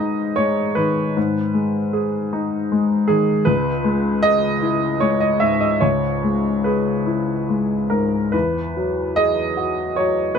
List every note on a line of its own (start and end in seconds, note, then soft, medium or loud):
0.00 1.12 G#2 soft
0.00 0.38 G#3 soft
0.00 0.61 D#4 soft
0.00 0.22 G#4 soft
0.00 0.75 B4 medium
0.00 0.38 D#5 medium
0.36 1.00 G#3 soft
0.36 0.76 C#5 medium
0.75 1.39 D#3 soft
0.75 2.70 B4 medium
1.17 3.43 G#2 medium
1.54 2.16 G#3 soft
1.93 2.56 G#4 medium
2.33 2.95 D#4 soft
2.72 3.32 G#3 soft
3.08 3.47 D#3 soft
3.08 3.46 G#4 medium
3.45 5.77 C#2 medium
3.45 4.23 B4 medium
3.84 4.46 G#3 medium
4.22 4.86 G#4 medium
4.22 5.00 D#5 loud
4.62 5.24 E4 soft
5.00 5.65 G#3 soft
5.00 5.20 C#5 medium
5.20 5.40 D#5 medium
5.40 6.07 G#2 soft
5.40 5.60 E5 medium
5.60 5.81 D#5 medium
5.81 8.30 C#2 soft
5.81 6.65 C#5 medium
6.24 6.91 G#3 soft
6.64 7.33 G#4 soft
6.64 7.49 B4 medium
7.06 7.74 E4 soft
7.49 8.17 G#3 soft
7.90 8.33 G#2 soft
7.90 8.33 A#4 medium
8.32 10.39 E2 soft
8.32 9.16 B4 medium
8.77 9.42 F#3 soft
9.16 9.81 G#4 soft
9.16 9.96 D#5 medium
9.57 10.20 F#4 soft
9.96 10.39 F#3 soft
9.96 10.36 C#5 medium
10.35 10.39 B4 medium